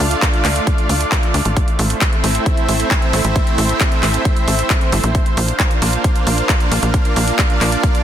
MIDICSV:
0, 0, Header, 1, 4, 480
1, 0, Start_track
1, 0, Tempo, 447761
1, 1679, Time_signature, 4, 2, 24, 8
1, 8611, End_track
2, 0, Start_track
2, 0, Title_t, "Supersaw synth"
2, 0, Program_c, 0, 81
2, 0, Note_on_c, 0, 57, 80
2, 0, Note_on_c, 0, 62, 77
2, 0, Note_on_c, 0, 65, 75
2, 0, Note_on_c, 0, 74, 73
2, 0, Note_on_c, 0, 77, 89
2, 1640, Note_off_c, 0, 57, 0
2, 1640, Note_off_c, 0, 62, 0
2, 1640, Note_off_c, 0, 65, 0
2, 1640, Note_off_c, 0, 74, 0
2, 1641, Note_off_c, 0, 77, 0
2, 1679, Note_on_c, 0, 57, 85
2, 1679, Note_on_c, 0, 60, 74
2, 1679, Note_on_c, 0, 64, 77
2, 1679, Note_on_c, 0, 72, 76
2, 1679, Note_on_c, 0, 76, 93
2, 5480, Note_off_c, 0, 57, 0
2, 5480, Note_off_c, 0, 76, 0
2, 5481, Note_off_c, 0, 60, 0
2, 5481, Note_off_c, 0, 64, 0
2, 5519, Note_on_c, 0, 58, 85
2, 5519, Note_on_c, 0, 62, 76
2, 5519, Note_on_c, 0, 77, 92
2, 5520, Note_on_c, 0, 65, 75
2, 7396, Note_off_c, 0, 72, 0
2, 7439, Note_on_c, 0, 74, 77
2, 8611, Note_off_c, 0, 58, 0
2, 8611, Note_off_c, 0, 62, 0
2, 8611, Note_off_c, 0, 65, 0
2, 8611, Note_off_c, 0, 74, 0
2, 8611, Note_off_c, 0, 77, 0
2, 8611, End_track
3, 0, Start_track
3, 0, Title_t, "Analog synth bass"
3, 0, Program_c, 1, 38
3, 0, Note_on_c, 1, 38, 100
3, 165, Note_off_c, 1, 38, 0
3, 479, Note_on_c, 1, 38, 86
3, 645, Note_off_c, 1, 38, 0
3, 958, Note_on_c, 1, 38, 77
3, 1125, Note_off_c, 1, 38, 0
3, 1439, Note_on_c, 1, 38, 97
3, 1522, Note_off_c, 1, 38, 0
3, 1559, Note_on_c, 1, 33, 76
3, 1725, Note_off_c, 1, 33, 0
3, 1919, Note_on_c, 1, 33, 102
3, 2085, Note_off_c, 1, 33, 0
3, 2399, Note_on_c, 1, 33, 87
3, 2565, Note_off_c, 1, 33, 0
3, 2879, Note_on_c, 1, 33, 82
3, 3045, Note_off_c, 1, 33, 0
3, 3359, Note_on_c, 1, 33, 96
3, 3442, Note_off_c, 1, 33, 0
3, 3479, Note_on_c, 1, 33, 75
3, 3645, Note_off_c, 1, 33, 0
3, 3839, Note_on_c, 1, 33, 100
3, 4005, Note_off_c, 1, 33, 0
3, 4319, Note_on_c, 1, 33, 82
3, 4485, Note_off_c, 1, 33, 0
3, 4799, Note_on_c, 1, 33, 80
3, 4965, Note_off_c, 1, 33, 0
3, 5278, Note_on_c, 1, 31, 104
3, 5362, Note_off_c, 1, 31, 0
3, 5399, Note_on_c, 1, 34, 81
3, 5565, Note_off_c, 1, 34, 0
3, 5759, Note_on_c, 1, 34, 99
3, 5925, Note_off_c, 1, 34, 0
3, 6239, Note_on_c, 1, 34, 85
3, 6405, Note_off_c, 1, 34, 0
3, 6719, Note_on_c, 1, 34, 83
3, 6885, Note_off_c, 1, 34, 0
3, 7198, Note_on_c, 1, 34, 94
3, 7281, Note_off_c, 1, 34, 0
3, 7318, Note_on_c, 1, 34, 78
3, 7485, Note_off_c, 1, 34, 0
3, 7679, Note_on_c, 1, 34, 95
3, 7845, Note_off_c, 1, 34, 0
3, 8158, Note_on_c, 1, 34, 83
3, 8325, Note_off_c, 1, 34, 0
3, 8611, End_track
4, 0, Start_track
4, 0, Title_t, "Drums"
4, 119, Note_on_c, 9, 42, 53
4, 227, Note_off_c, 9, 42, 0
4, 239, Note_on_c, 9, 36, 119
4, 239, Note_on_c, 9, 39, 127
4, 239, Note_on_c, 9, 42, 57
4, 346, Note_off_c, 9, 36, 0
4, 347, Note_off_c, 9, 39, 0
4, 347, Note_off_c, 9, 42, 0
4, 359, Note_on_c, 9, 42, 25
4, 466, Note_off_c, 9, 42, 0
4, 479, Note_on_c, 9, 39, 63
4, 479, Note_on_c, 9, 46, 97
4, 586, Note_off_c, 9, 39, 0
4, 586, Note_off_c, 9, 46, 0
4, 599, Note_on_c, 9, 42, 51
4, 706, Note_off_c, 9, 42, 0
4, 718, Note_on_c, 9, 36, 127
4, 719, Note_on_c, 9, 42, 54
4, 826, Note_off_c, 9, 36, 0
4, 827, Note_off_c, 9, 42, 0
4, 839, Note_on_c, 9, 42, 27
4, 946, Note_off_c, 9, 42, 0
4, 959, Note_on_c, 9, 46, 108
4, 1066, Note_off_c, 9, 46, 0
4, 1078, Note_on_c, 9, 42, 54
4, 1186, Note_off_c, 9, 42, 0
4, 1198, Note_on_c, 9, 36, 117
4, 1198, Note_on_c, 9, 39, 120
4, 1198, Note_on_c, 9, 42, 53
4, 1306, Note_off_c, 9, 36, 0
4, 1306, Note_off_c, 9, 39, 0
4, 1306, Note_off_c, 9, 42, 0
4, 1319, Note_on_c, 9, 42, 27
4, 1426, Note_off_c, 9, 42, 0
4, 1439, Note_on_c, 9, 46, 93
4, 1546, Note_off_c, 9, 46, 0
4, 1558, Note_on_c, 9, 42, 52
4, 1666, Note_off_c, 9, 42, 0
4, 1678, Note_on_c, 9, 36, 127
4, 1679, Note_on_c, 9, 42, 51
4, 1786, Note_off_c, 9, 36, 0
4, 1786, Note_off_c, 9, 42, 0
4, 1798, Note_on_c, 9, 42, 26
4, 1906, Note_off_c, 9, 42, 0
4, 1918, Note_on_c, 9, 46, 108
4, 2025, Note_off_c, 9, 46, 0
4, 2038, Note_on_c, 9, 42, 49
4, 2146, Note_off_c, 9, 42, 0
4, 2158, Note_on_c, 9, 36, 116
4, 2158, Note_on_c, 9, 39, 127
4, 2158, Note_on_c, 9, 42, 53
4, 2266, Note_off_c, 9, 36, 0
4, 2266, Note_off_c, 9, 39, 0
4, 2266, Note_off_c, 9, 42, 0
4, 2279, Note_on_c, 9, 42, 24
4, 2386, Note_off_c, 9, 42, 0
4, 2399, Note_on_c, 9, 46, 101
4, 2506, Note_off_c, 9, 46, 0
4, 2519, Note_on_c, 9, 42, 51
4, 2626, Note_off_c, 9, 42, 0
4, 2638, Note_on_c, 9, 36, 123
4, 2639, Note_on_c, 9, 42, 53
4, 2746, Note_off_c, 9, 36, 0
4, 2746, Note_off_c, 9, 42, 0
4, 2759, Note_on_c, 9, 42, 26
4, 2867, Note_off_c, 9, 42, 0
4, 2879, Note_on_c, 9, 46, 107
4, 2986, Note_off_c, 9, 46, 0
4, 2999, Note_on_c, 9, 42, 51
4, 3106, Note_off_c, 9, 42, 0
4, 3119, Note_on_c, 9, 36, 121
4, 3119, Note_on_c, 9, 39, 126
4, 3119, Note_on_c, 9, 42, 53
4, 3226, Note_off_c, 9, 36, 0
4, 3226, Note_off_c, 9, 39, 0
4, 3226, Note_off_c, 9, 42, 0
4, 3240, Note_on_c, 9, 42, 25
4, 3347, Note_off_c, 9, 42, 0
4, 3359, Note_on_c, 9, 46, 91
4, 3466, Note_off_c, 9, 46, 0
4, 3479, Note_on_c, 9, 42, 53
4, 3586, Note_off_c, 9, 42, 0
4, 3599, Note_on_c, 9, 36, 121
4, 3599, Note_on_c, 9, 42, 51
4, 3706, Note_off_c, 9, 36, 0
4, 3706, Note_off_c, 9, 42, 0
4, 3719, Note_on_c, 9, 42, 25
4, 3826, Note_off_c, 9, 42, 0
4, 3839, Note_on_c, 9, 46, 111
4, 3946, Note_off_c, 9, 46, 0
4, 3959, Note_on_c, 9, 42, 48
4, 4067, Note_off_c, 9, 42, 0
4, 4079, Note_on_c, 9, 36, 116
4, 4079, Note_on_c, 9, 39, 120
4, 4079, Note_on_c, 9, 42, 49
4, 4186, Note_off_c, 9, 36, 0
4, 4187, Note_off_c, 9, 39, 0
4, 4187, Note_off_c, 9, 42, 0
4, 4199, Note_on_c, 9, 42, 24
4, 4306, Note_off_c, 9, 42, 0
4, 4319, Note_on_c, 9, 39, 60
4, 4319, Note_on_c, 9, 46, 91
4, 4426, Note_off_c, 9, 39, 0
4, 4426, Note_off_c, 9, 46, 0
4, 4439, Note_on_c, 9, 42, 50
4, 4546, Note_off_c, 9, 42, 0
4, 4559, Note_on_c, 9, 36, 124
4, 4560, Note_on_c, 9, 42, 51
4, 4666, Note_off_c, 9, 36, 0
4, 4667, Note_off_c, 9, 42, 0
4, 4679, Note_on_c, 9, 42, 26
4, 4786, Note_off_c, 9, 42, 0
4, 4799, Note_on_c, 9, 46, 110
4, 4906, Note_off_c, 9, 46, 0
4, 4919, Note_on_c, 9, 42, 52
4, 5026, Note_off_c, 9, 42, 0
4, 5039, Note_on_c, 9, 36, 118
4, 5039, Note_on_c, 9, 39, 121
4, 5039, Note_on_c, 9, 42, 53
4, 5146, Note_off_c, 9, 36, 0
4, 5146, Note_off_c, 9, 39, 0
4, 5146, Note_off_c, 9, 42, 0
4, 5159, Note_on_c, 9, 42, 25
4, 5266, Note_off_c, 9, 42, 0
4, 5279, Note_on_c, 9, 46, 90
4, 5386, Note_off_c, 9, 46, 0
4, 5399, Note_on_c, 9, 42, 50
4, 5506, Note_off_c, 9, 42, 0
4, 5519, Note_on_c, 9, 36, 120
4, 5519, Note_on_c, 9, 42, 49
4, 5626, Note_off_c, 9, 36, 0
4, 5626, Note_off_c, 9, 42, 0
4, 5639, Note_on_c, 9, 42, 26
4, 5746, Note_off_c, 9, 42, 0
4, 5759, Note_on_c, 9, 46, 107
4, 5866, Note_off_c, 9, 46, 0
4, 5879, Note_on_c, 9, 42, 51
4, 5986, Note_off_c, 9, 42, 0
4, 5998, Note_on_c, 9, 36, 112
4, 5999, Note_on_c, 9, 39, 114
4, 5999, Note_on_c, 9, 42, 53
4, 6106, Note_off_c, 9, 36, 0
4, 6106, Note_off_c, 9, 39, 0
4, 6106, Note_off_c, 9, 42, 0
4, 6119, Note_on_c, 9, 42, 25
4, 6226, Note_off_c, 9, 42, 0
4, 6239, Note_on_c, 9, 46, 96
4, 6346, Note_off_c, 9, 46, 0
4, 6359, Note_on_c, 9, 42, 49
4, 6466, Note_off_c, 9, 42, 0
4, 6479, Note_on_c, 9, 36, 115
4, 6479, Note_on_c, 9, 42, 52
4, 6586, Note_off_c, 9, 36, 0
4, 6586, Note_off_c, 9, 42, 0
4, 6599, Note_on_c, 9, 42, 26
4, 6706, Note_off_c, 9, 42, 0
4, 6719, Note_on_c, 9, 46, 109
4, 6826, Note_off_c, 9, 46, 0
4, 6839, Note_on_c, 9, 42, 49
4, 6946, Note_off_c, 9, 42, 0
4, 6958, Note_on_c, 9, 36, 116
4, 6959, Note_on_c, 9, 39, 109
4, 6959, Note_on_c, 9, 42, 50
4, 7066, Note_off_c, 9, 36, 0
4, 7066, Note_off_c, 9, 39, 0
4, 7066, Note_off_c, 9, 42, 0
4, 7079, Note_on_c, 9, 42, 25
4, 7186, Note_off_c, 9, 42, 0
4, 7199, Note_on_c, 9, 46, 96
4, 7306, Note_off_c, 9, 46, 0
4, 7319, Note_on_c, 9, 42, 53
4, 7426, Note_off_c, 9, 42, 0
4, 7439, Note_on_c, 9, 36, 118
4, 7439, Note_on_c, 9, 42, 52
4, 7546, Note_off_c, 9, 36, 0
4, 7546, Note_off_c, 9, 42, 0
4, 7559, Note_on_c, 9, 42, 25
4, 7666, Note_off_c, 9, 42, 0
4, 7679, Note_on_c, 9, 46, 101
4, 7786, Note_off_c, 9, 46, 0
4, 7799, Note_on_c, 9, 42, 51
4, 7906, Note_off_c, 9, 42, 0
4, 7919, Note_on_c, 9, 36, 115
4, 7920, Note_on_c, 9, 39, 119
4, 7920, Note_on_c, 9, 42, 55
4, 8026, Note_off_c, 9, 36, 0
4, 8027, Note_off_c, 9, 39, 0
4, 8027, Note_off_c, 9, 42, 0
4, 8039, Note_on_c, 9, 42, 26
4, 8147, Note_off_c, 9, 42, 0
4, 8160, Note_on_c, 9, 39, 61
4, 8160, Note_on_c, 9, 46, 90
4, 8267, Note_off_c, 9, 39, 0
4, 8267, Note_off_c, 9, 46, 0
4, 8279, Note_on_c, 9, 42, 52
4, 8386, Note_off_c, 9, 42, 0
4, 8399, Note_on_c, 9, 36, 118
4, 8400, Note_on_c, 9, 42, 53
4, 8506, Note_off_c, 9, 36, 0
4, 8507, Note_off_c, 9, 42, 0
4, 8520, Note_on_c, 9, 42, 28
4, 8611, Note_off_c, 9, 42, 0
4, 8611, End_track
0, 0, End_of_file